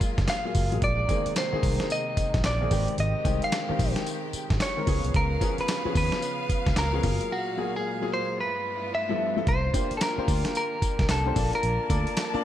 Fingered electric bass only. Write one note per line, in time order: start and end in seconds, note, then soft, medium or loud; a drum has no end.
0.01 muted fingered electric bass stroke soft
0.18 0.26 F#1 medium
0.55 0.69 F#1 loud
0.72 0.80 A1 medium
0.82 1.04 A#1 loud
1.26 muted fingered electric bass stroke soft
1.53 muted fingered electric bass stroke soft
1.63 1.77 C2 medium
2.17 muted fingered electric bass stroke soft
2.34 2.42 A#1 medium
2.44 2.66 A#1 loud
2.71 2.85 G#1 loud
2.98 3.12 G#1 loud
3.25 3.39 C2 medium
3.70 muted fingered electric bass stroke medium
3.79 3.93 A#1 medium
4.33 muted fingered electric bass stroke soft
4.50 4.58 G#1 medium
4.87 5.01 C#2 loud
5.05 5.13 C2 medium
5.14 5.36 C#2 loud
5.59 muted fingered electric bass stroke soft
5.85 muted fingered electric bass stroke medium
5.95 6.09 D#2 medium
6.50 muted fingered electric bass stroke soft
6.66 6.75 C#2 medium
6.77 6.98 C#2 loud
7.04 7.17 F#1 loud
9.47 9.69 C2 medium
9.91 muted fingered electric bass stroke soft
10.18 muted fingered electric bass stroke medium
10.28 10.42 D2 medium
10.82 muted fingered electric bass stroke soft
10.99 11.07 C2 medium
11.09 11.31 C2 loud
11.36 11.50 A#1 loud
11.63 11.77 A#1 loud
11.90 12.04 D2 loud
12.34 muted fingered electric bass stroke medium